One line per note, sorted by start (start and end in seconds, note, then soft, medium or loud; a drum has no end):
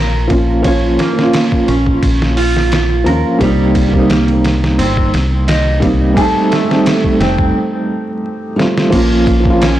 0.00 0.96 A#1 medium
0.00 0.24 F3 medium
0.00 0.26 A#3 medium
0.00 0.28 C#4 medium
0.00 0.29 F4 loud
0.00 0.29 A#4 medium
0.28 0.60 F3 medium
0.28 0.60 A#3 medium
0.28 0.61 C#4 medium
0.28 kick medium
0.28 ride medium
0.33 0.62 F4 medium
0.63 1.11 F3 loud
0.63 1.13 A#3 medium
0.63 1.14 C#4 medium
0.63 0.96 C#5 medium
0.63 kick loud
0.63 ride medium
0.68 1.15 F4 loud
0.99 1.65 A#3 medium
0.99 snare soft
0.99 ride medium
1.13 3.00 F3 medium
1.13 3.02 A#3 medium
1.19 3.03 C#4 medium
1.19 snare medium
1.23 3.05 F4 loud
1.33 snare loud
1.33 ride medium
1.52 kick medium
1.68 1.99 A#1 medium
1.68 2.34 C#4 medium
1.68 ride medium
1.86 kick medium
2.03 3.03 A#1 medium
2.03 kick loud
2.03 ride medium
2.22 snare medium
2.37 3.03 F4 loud
2.37 open hi-hat medium
2.56 snare soft
2.72 snare loud
2.72 ride medium
3.04 3.22 D#2 medium
3.04 3.36 F3 medium
3.04 3.36 A#3 medium
3.04 3.37 C#4 medium
3.04 3.37 A#4 medium
3.04 ride medium
3.09 3.38 F4 medium
3.39 4.80 C2 medium
3.39 3.87 G3 loud
3.39 4.06 G3 medium
3.39 3.89 A#3 medium
3.39 3.90 C4 medium
3.39 kick loud
3.39 ride medium
3.44 3.91 D#4 loud
3.75 kick medium
3.75 ride medium
3.88 5.76 G3 medium
3.88 5.77 A#3 medium
3.94 5.79 C4 medium
3.94 kick medium
3.98 5.81 D#4 loud
4.09 4.30 A#3 medium
4.09 snare loud
4.09 ride medium
4.28 ride soft
4.44 snare medium
4.44 ride medium
4.64 snare soft
4.78 5.09 G1 medium
4.78 5.11 C4 loud
4.78 ride medium
4.97 kick loud
5.14 6.14 C2 medium
5.14 snare soft
5.14 ride medium
5.48 5.81 D#4 medium
5.48 snare loud
5.48 ride medium
5.80 6.12 G3 medium
5.80 6.13 A#3 medium
5.80 6.13 C4 medium
5.80 kick medium
5.80 ride medium
5.85 6.14 D#4 loud
6.14 6.63 G3 loud
6.14 6.65 A3 medium
6.14 6.66 C4 medium
6.14 6.48 A4 medium
6.14 kick loud
6.14 ride medium
6.19 6.66 D#4 loud
6.51 7.17 A3 medium
6.51 snare medium
6.51 ride medium
6.65 8.52 G3 medium
6.65 8.53 A3 medium
6.71 8.55 C4 medium
6.71 8.57 D#4 loud
6.71 snare medium
6.86 snare loud
6.86 ride medium
7.04 kick medium
7.20 7.51 F1 medium
7.20 7.55 C4 medium
7.20 snare medium
7.20 ride medium
7.39 kick medium
8.56 8.88 G3 medium
8.56 8.88 A3 medium
8.56 8.89 C4 medium
8.56 snare medium
8.61 8.90 F4 medium
8.77 snare medium
8.90 9.80 A#1 loud
8.90 9.39 F3 medium
8.90 9.41 A#3 medium
8.90 9.58 A#3 medium
8.90 9.41 C#4 medium
8.90 kick loud
8.90 crash medium
8.90 ride medium
8.95 9.42 F4 loud
9.27 kick loud
9.27 ride medium
9.40 9.80 F3 medium
9.40 9.80 A#3 medium
9.45 9.80 C#4 medium
9.45 kick loud
9.50 9.80 F4 loud
9.62 9.80 C#4 medium
9.62 snare loud
9.62 ride medium